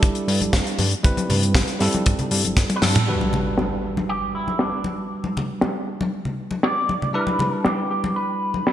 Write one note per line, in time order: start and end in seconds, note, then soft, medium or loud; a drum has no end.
0.00 0.11 G1 medium
0.00 0.77 G3 medium
0.00 0.77 D4 medium
0.00 0.78 E4 medium
0.00 0.78 A4 medium
0.00 kick loud
0.00 closed hi-hat medium
0.15 closed hi-hat medium
0.28 0.41 G2 medium
0.28 open hi-hat loud
0.41 0.51 G1 soft
0.41 closed hi-hat soft
0.41 high conga medium
0.53 0.61 G1 loud
0.53 kick loud
0.53 snare loud
0.53 closed hi-hat medium
0.67 closed hi-hat medium
0.79 0.95 G2 medium
0.79 open hi-hat medium
0.79 high conga medium
0.91 closed hi-hat soft
1.03 1.12 G1 medium
1.03 1.77 G3 medium
1.03 1.77 C4 medium
1.03 1.78 E4 medium
1.03 1.78 B4 medium
1.03 kick loud
1.03 closed hi-hat medium
1.17 closed hi-hat medium
1.17 high conga medium
1.30 1.56 G2 medium
1.30 open hi-hat medium
1.30 low conga medium
1.43 closed hi-hat medium
1.55 1.63 G1 medium
1.55 kick loud
1.55 snare loud
1.55 closed hi-hat loud
1.55 high conga medium
1.68 closed hi-hat medium
1.79 1.89 G2 medium
1.79 3.04 G3 medium
1.79 3.05 C4 medium
1.79 3.05 E4 medium
1.79 3.05 A4 medium
1.79 snare soft
1.79 open hi-hat medium
1.93 closed hi-hat medium
1.93 high conga medium
2.06 2.14 G1 medium
2.06 kick loud
2.06 closed hi-hat loud
2.19 2.29 G2 soft
2.19 closed hi-hat soft
2.19 low conga medium
2.31 2.44 G2 medium
2.31 open hi-hat loud
2.44 2.54 G1 soft
2.44 closed hi-hat soft
2.44 high conga medium
2.57 2.65 G1 loud
2.57 kick loud
2.57 snare medium
2.57 closed hi-hat loud
2.70 closed hi-hat medium
2.70 high tom medium
2.76 2.82 B4 medium
2.82 2.98 G2 medium
2.82 4.09 A4 loud
2.82 snare medium
2.82 open hi-hat medium
2.82 high conga medium
2.95 closed hi-hat medium
2.95 mid tom medium
3.07 7.11 G3 medium
3.07 7.12 D4 medium
3.07 7.12 F#4 medium
3.07 7.12 B4 medium
3.07 crash medium
3.07 impact medium
3.21 high conga medium
3.33 muted conga medium
3.33 low conga medium
3.58 snare loud
3.58 high conga medium
3.97 high conga medium
4.09 4.33 G4 medium
4.35 4.61 E4 medium
4.48 high conga medium
4.59 4.96 D4 medium
4.59 snare loud
4.84 high conga medium
5.24 high conga medium
5.37 muted conga medium
5.37 low conga medium
5.61 snare loud
5.61 high conga medium
6.01 high conga medium
6.25 low conga medium
6.51 muted conga soft
6.51 high conga medium
6.63 7.14 D5 medium
6.63 snare loud
6.89 high conga medium
7.02 low conga medium
7.13 8.73 G3 medium
7.13 8.73 D4 medium
7.13 8.73 E4 medium
7.13 7.56 B4 loud
7.13 8.73 B4 medium
7.27 high conga medium
7.39 muted conga medium
7.39 low conga medium
7.56 7.67 A4 loud
7.65 7.89 G4 medium
7.65 snare loud
7.65 high conga medium
7.90 8.14 G4 medium
8.04 high conga medium
8.16 8.73 B4 medium
8.54 high conga medium
8.67 snare loud